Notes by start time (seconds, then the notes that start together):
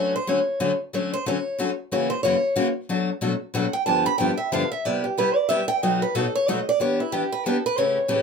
Already playing: D3 F#3 A3 C#4 F#4 C#5
0.16 C5
0.27 D3 F#3 A3 C#4 F#4 C#5
0.60 D3 F#3 A3 C#4 F#4
0.93 D3 F#3 A3 C#4 F#4 C#5
1.14 C5
1.26 D3 F#3 A3 C#4 F#4 C#5
1.58 D3 F#3 A3 C#4 F#4
1.92 F#2 C#3 E3 A#3 C#4 F#4 C#5
2.10 C5
2.23 F#2 C#3 E3 A#3 C#4 F#4 C#5
2.56 F#2 C#3 E3 A#3 C#4 F#4
2.89 B2 F#3 A3 D4 F#4
3.21 B2 F#3 A3 D4 F#4
3.54 B2 F#3 A3 D4 F#4 F#5
3.73 G5
3.86 G2 D3 F3 B3 D4 G4 A5
4.06 B5
4.18 G2 D3 F3 B3 D4 G4 G5
4.37 E5
4.52 G2 D3 F3 B3 D4 G4 F5
4.72 E5
4.85 C3 G3 B3 E4 G4 D5
5.04 G4
5.18 C3 G3 B3 E4 G4 B4
5.35 D5
5.49 C3 G3 B3 E4 G4 E5
5.68 G5
5.83 B2 F#3 A3 D#4 F#4 D#5
6.02 B4
6.15 B2 F#3 A3 D#4 F#4 A4
6.35 C#5
6.48 B2 F#3 A3 D#4 F#4 D#5
6.69 D5
6.80 E3 B3 D4 G4 C#5
7.00 E4
7.12 E3 B3 D4 G4
7.32 B4
7.46 E3 B3 D4 G4 A4
7.66 B4
7.78 A2 C#3 E3 A3 C#4 G4 C#5
8.08 A2 C#3 E3 A3 C#4 G4